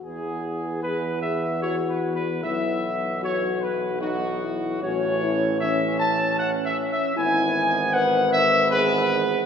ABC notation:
X:1
M:3/4
L:1/8
Q:1/4=76
K:E
V:1 name="Trumpet section"
G2 B e (3c B B | e2 c B F2 | c2 e a (3f e e | g2 f e B2 |]
V:2 name="French horn section"
z2 G2 F2 | E2 F2 D E | F E C4 | E2 B2 G2 |]
V:3 name="Trombone section" clef=bass
[E,B,]2 [E,B,]4 | [E,B,]4 [E,B,]2 | [E,C]2 [E,C]4 | [E,B,]4 [E,B,]2 |]
V:4 name="Tuba" clef=bass
E,,6 | B,,,6 | A,,,4- A,,, z | G,,,6 |]